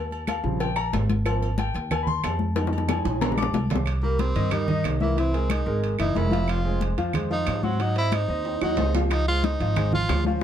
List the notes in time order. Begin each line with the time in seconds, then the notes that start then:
Already playing: D#2
0.11 high conga, low agogo
0.27 F5, cowbell, high conga, low timbale, low agogo, claves
0.44 A#1 C#3 F3 G3 C4, high conga
0.60 G5, cowbell, high conga, low agogo
0.76 A#5, high conga, low agogo, claves
0.93 G#1, cowbell, high conga, low timbale, low agogo
1.10 cowbell, high conga
1.25 F3 A#3 C4, cowbell, high conga, low agogo, claves
1.42 high conga, low agogo
1.58 G5, cowbell, high conga, low timbale, low agogo
1.74 D#2, cowbell, high conga
1.91 G#5, cowbell, high conga, low conga, low agogo, claves
2.03 B5
2.07 C6, high conga, low conga
2.23 F2, cowbell, high conga, low timbale, low agogo, claves
2.39 high conga
2.56 G3 G#3 D#4, cowbell, high bongo, low agogo
2.67 high bongo
2.72 high conga, low agogo
2.78 high bongo
2.89 G#5, cowbell, low bongo, high conga, high timbale, low agogo, claves
3.05 A#1, high conga, high timbale
3.21 G#3 C4 D4 A#5, cowbell, low bongo, high conga, low timbale, low agogo
3.32 low bongo
3.37 D6, high conga, low timbale, low agogo, claves
3.43 low bongo
3.54 C2, cowbell, low bongo, high conga, low agogo
3.70 cowbell, low conga, low timbale
3.75 low bongo
3.86 high conga, high timbale, claves
4.03 G3 A#3 G4 A#4, high conga
4.19 C4, high conga, high timbale, low timbale
4.35 G2 D#3 D#4 D#5, high conga, high timbale
4.51 G3 D#4 G4 A#4, high conga, low conga, high timbale, claves
4.67 D#3 D#4 D#5, high conga, low conga
4.84 C2, high conga, high timbale, low timbale, claves
5.01 E3 A#3 E4 E5, high conga
5.17 E3 C4 E4 E5, high conga, high timbale
5.33 G#3 G#4 A#4, high conga, high timbale
5.50 D#4, high conga, high timbale, low timbale, claves
5.66 G#1 G#3 G#4 A#4, high conga
5.83 high conga, high timbale
5.99 F#1 E3 D#4 E4 E5, high conga, high timbale, claves
6.15 F1 G#3 E4 G#4 A#4, high conga, low timbale
6.31 F3 F4 F5, high conga, high timbale
6.48 F4, high conga, high timbale, claves
6.64 G#3 G#4 C5, high conga
6.81 high conga, high timbale, low timbale
6.97 F2 F3 F4 F5, high conga, high timbale
7.13 G#3 G#4 C5, high conga, low conga, high timbale, claves
7.30 F3 D#4 F4 F5, high conga
7.46 G#2, high conga, high timbale, low timbale, claves
7.63 F#3 C4 F#4 F#5, high conga
7.79 F#3 D#4 F#4 F#5, high timbale
7.96 C4 E4 C5 D#5, high conga, high timbale
8.12 D#4, high conga, high timbale, low timbale, claves
8.28 D#2 C4 C5 D#5, high conga
8.45 high conga, high timbale
8.61 D#2 F#3 D#4 F#4 F#5, high conga, high timbale, claves
8.77 C#2 C4 C5 D#5, high conga, low timbale
8.95 F3 C4 F4 F5, high conga, low timbale
9.11 D#4, high bongo, high conga, high timbale, claves
9.28 G#3 F4 G#4 C5, high conga
9.44 D#4, high bongo, high conga, high timbale, low timbale
9.60 G#1 F3 F4 F5, high bongo, high conga, high timbale
9.76 G#3 G#4 C5, high bongo, high conga, low conga, high timbale, claves
9.92 F3 F4 F5, high bongo, high conga, low conga
10.08 D2, high bongo, low bongo, high conga, high timbale, low timbale, claves
10.24 F3 C#4 F4 F5, high bongo, high conga